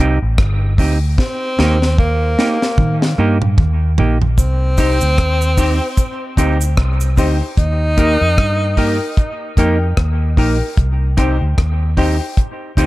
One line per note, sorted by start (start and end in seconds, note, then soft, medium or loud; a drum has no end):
0.00 0.21 C2 medium
0.00 0.17 C4 medium
0.00 0.18 D#4 medium
0.00 0.18 G4 medium
0.22 0.38 A1 medium
0.38 0.76 G1 medium
0.38 kick loud
0.38 cross-stick loud
0.78 1.16 D2 medium
0.78 0.97 C4 medium
0.78 0.98 D#4 medium
0.78 0.98 G4 medium
0.78 kick medium
0.78 open hi-hat medium
1.18 1.98 C4 loud
1.18 kick loud
1.18 snare medium
1.59 2.35 D#2 medium
1.59 1.77 A#3 medium
1.59 1.78 D#4 medium
1.59 1.78 G4 loud
1.59 snare medium
1.82 snare medium
1.98 3.14 A#3 medium
1.98 kick loud
2.38 2.57 A#3 medium
2.38 2.57 D#4 medium
2.38 2.58 G4 medium
2.38 snare medium
2.62 snare medium
2.78 3.16 D#3 loud
2.78 kick loud
2.78 mid tom medium
3.02 muted clean electric guitar stroke soft
3.02 snare medium
3.18 3.56 G2 medium
3.18 3.37 A#3 medium
3.18 3.37 D#4 medium
3.18 3.38 G4 loud
3.42 mid tom medium
3.58 3.96 D#2 medium
3.58 kick loud
3.58 floor tom medium
3.98 4.36 A#1 medium
3.98 4.17 A#3 medium
3.98 4.17 D#4 medium
3.98 4.17 G4 medium
3.98 floor tom loud
4.22 floor tom medium
4.38 4.98 C2 medium
4.38 6.74 C4 loud
4.38 kick loud
4.38 cabasa medium
4.77 4.97 C4 medium
4.77 5.02 D#4 medium
4.77 4.97 D#4 medium
4.77 5.02 G4 medium
4.77 4.98 G4 medium
4.77 5.02 C5 medium
4.77 kick medium
4.77 cross-stick medium
4.77 open hi-hat medium
4.77 cabasa medium
5.01 5.17 D2 medium
5.01 cabasa medium
5.18 5.79 D#2 medium
5.18 kick loud
5.18 cross-stick loud
5.18 hi-hat pedal medium
5.41 cabasa medium
5.57 5.77 C4 medium
5.57 5.81 D#4 medium
5.57 5.77 D#4 medium
5.57 5.82 G4 medium
5.57 5.77 G4 medium
5.57 5.82 C5 loud
5.57 kick medium
5.57 open hi-hat medium
5.57 cabasa medium
5.81 muted clean electric guitar stroke soft
5.97 kick loud
5.97 hi-hat pedal medium
5.97 cabasa medium
6.37 6.76 D2 medium
6.37 6.56 C4 medium
6.37 6.61 D#4 medium
6.37 6.57 D#4 medium
6.37 6.60 G4 medium
6.37 6.57 G4 loud
6.37 6.60 C5 medium
6.37 kick medium
6.37 closed hi-hat medium
6.37 cabasa soft
6.61 6.68 G4 soft
6.61 6.68 C5 soft
6.61 cabasa medium
6.77 7.16 C2 medium
6.77 kick loud
6.77 cross-stick loud
7.01 cabasa medium
7.17 7.40 D2 medium
7.17 7.36 C4 medium
7.17 7.41 D#4 medium
7.17 7.37 D#4 medium
7.17 7.42 G4 medium
7.17 7.37 G4 medium
7.17 7.42 C5 loud
7.17 kick medium
7.17 open hi-hat medium
7.17 cabasa soft
7.41 muted clean electric guitar stroke soft
7.57 8.18 D#2 medium
7.57 9.14 D#4 loud
7.57 kick loud
7.57 hi-hat pedal medium
7.97 8.16 A#3 medium
7.97 8.21 D#4 medium
7.97 8.17 D#4 medium
7.97 8.22 G4 medium
7.97 8.17 G4 medium
7.97 8.22 A#4 loud
7.97 kick medium
7.97 closed hi-hat medium
8.21 8.37 F2 medium
8.38 8.98 G2 medium
8.38 kick loud
8.38 cross-stick loud
8.77 8.96 A#3 medium
8.77 9.01 D#4 medium
8.77 8.97 D#4 medium
8.77 9.01 G4 medium
8.77 8.97 G4 medium
8.77 9.02 A#4 loud
8.77 kick medium
8.77 open hi-hat medium
9.17 kick loud
9.17 hi-hat pedal medium
9.57 9.95 F2 medium
9.57 9.76 A#3 loud
9.57 9.81 D#4 medium
9.57 9.77 D#4 medium
9.57 9.82 G4 medium
9.57 9.77 G4 medium
9.57 9.82 A#4 medium
9.57 kick medium
9.57 closed hi-hat medium
9.97 10.35 D#2 medium
9.97 kick medium
9.97 cross-stick loud
10.37 10.60 A#1 medium
10.37 10.56 A#3 medium
10.37 10.61 D#4 medium
10.37 10.56 D#4 medium
10.37 10.62 G4 medium
10.37 10.57 G4 medium
10.37 10.62 A#4 loud
10.37 kick medium
10.37 open hi-hat medium
10.77 11.38 C2 medium
10.77 kick loud
10.77 hi-hat pedal medium
11.17 11.36 C4 medium
11.17 11.41 D#4 medium
11.17 11.36 D#4 medium
11.17 11.41 G4 medium
11.17 11.37 G4 medium
11.17 11.42 C5 loud
11.17 kick loud
11.17 cross-stick medium
11.17 closed hi-hat medium
11.41 11.57 D2 medium
11.58 12.18 D#2 medium
11.58 kick loud
11.58 cross-stick loud
11.97 12.16 C4 medium
11.97 12.21 D#4 medium
11.97 12.16 D#4 medium
11.97 12.21 G4 medium
11.97 12.17 G4 medium
11.97 12.22 C5 medium
11.97 kick medium
11.97 open hi-hat medium
12.21 muted clean electric guitar stroke soft
12.37 kick loud
12.37 hi-hat pedal medium
12.77 12.86 D2 loud
12.77 12.86 C4 medium
12.77 12.86 D#4 medium
12.77 12.86 D#4 loud
12.77 12.86 G4 medium
12.77 12.86 G4 loud
12.77 12.86 C5 medium
12.77 kick medium
12.77 closed hi-hat medium